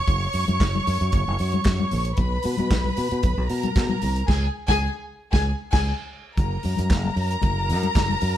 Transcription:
Already playing: violin section C#5 C#6
0.08 fingered electric bass F#1, kick, closed hi-hat, muted conga, low conga
0.33 fingered electric bass F#2, open hi-hat, muted conga
0.48 fingered electric bass F#2, closed hi-hat, high conga
0.60 fingered electric bass F#1, kick, snare, clap, closed hi-hat, muted conga
0.75 high conga
0.87 fingered electric bass F#2, open hi-hat, muted conga
1.01 fingered electric bass F#2, closed hi-hat
1.12 fingered electric bass F#1, kick, closed hi-hat, low conga
1.28 fingered electric bass F#1
1.39 fingered electric bass F#2, open hi-hat, muted conga
1.52 closed hi-hat, high conga
1.64 fingered electric bass F#2, kick, snare, clap, closed hi-hat
1.79 high conga
1.91 fingered electric bass A#1, open hi-hat, muted conga, low conga
2.05 closed hi-hat
2.17 fingered electric bass B1, violin section B4 B5, kick, closed hi-hat, low conga
2.42 fingered electric bass B2, open hi-hat, muted conga
2.57 fingered electric bass B2, closed hi-hat, high conga
2.71 fingered electric bass B1, kick, snare, clap, closed hi-hat, muted conga
2.84 high conga
2.96 fingered electric bass B2, open hi-hat, muted conga
3.11 fingered electric bass B2, closed hi-hat
3.23 fingered electric bass B1, kick, closed hi-hat, low conga
3.38 fingered electric bass B1
3.48 fingered electric bass B2, violin section A#4 A#5, open hi-hat, muted conga
3.63 closed hi-hat, high conga
3.75 fingered electric bass B2, kick, snare, clap, closed hi-hat, muted conga
3.89 high conga
4.02 fingered electric bass C2, open hi-hat, low conga
4.16 closed hi-hat
4.27 fingered electric bass C#2, violin section G#4 G#5, kick, snare, crash
4.68 fingered electric bass C#2, violin section G#4 G#5, kick, snare
5.32 fingered electric bass C#2, violin section G#4 G#5, kick, snare
5.72 fingered electric bass C#2, violin section G#4 G#5, kick, snare, crash
6.37 fingered electric bass F#1, violin section A#4 A#5, kick, closed hi-hat, low conga
6.63 fingered electric bass F#2, open hi-hat, muted conga
6.77 fingered electric bass F#2, closed hi-hat, high conga
6.90 fingered electric bass F#1, kick, snare, clap, closed hi-hat
7.04 high conga
7.16 fingered electric bass F#2, open hi-hat
7.31 closed hi-hat
7.42 fingered electric bass F#1, kick, closed hi-hat, high conga, low conga
7.69 fingered electric bass F#2, open hi-hat
7.83 closed hi-hat, high conga
7.95 fingered electric bass F#1, kick, snare, clap, closed hi-hat
8.09 high conga
8.21 fingered electric bass F#2, open hi-hat, muted conga

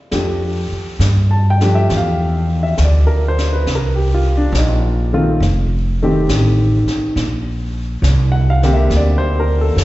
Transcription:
Already playing: grand piano C4 D4 F4
0.11 upright bass F2, grand piano F3 A3 D4 G4, brush sweep, snare
0.72 muted upright bass stroke
0.99 upright bass G2, snare, hi-hat pedal
1.31 grand piano A5
1.50 grand piano G5
1.61 grand piano F3 A3 D4 G4, snare
1.75 grand piano E5
1.90 upright bass E2, brush sweep, snare
1.97 grand piano F5
2.63 grand piano E5
2.78 upright bass D2, snare, hi-hat pedal
2.85 grand piano D5
3.07 grand piano A#4
3.28 grand piano C5
3.38 snare
3.53 grand piano B4
3.66 upright bass C2, brush sweep, snare
3.75 grand piano A#4
3.95 grand piano G4
4.14 grand piano F4
4.37 grand piano D4
4.52 upright bass A#1, snare, hi-hat pedal
4.58 grand piano D#4
5.13 grand piano D#3 A3 C4 F4
5.40 upright bass F1, brush sweep, snare
6.02 grand piano D#3 A3 C4 G4
6.29 upright bass A1, snare, hi-hat pedal
6.88 muted upright bass stroke, snare
7.16 upright bass A#1, brush sweep, snare
8.02 upright bass C2, snare, hi-hat pedal
8.32 grand piano F#5
8.50 grand piano F5
8.63 grand piano D3 A#3 C4 G4, snare
8.73 grand piano E5
8.90 upright bass D2, brush sweep, snare
8.97 grand piano D5
9.18 grand piano C5
9.40 grand piano A#4
9.61 grand piano A4
9.76 upright bass F2, snare, hi-hat pedal

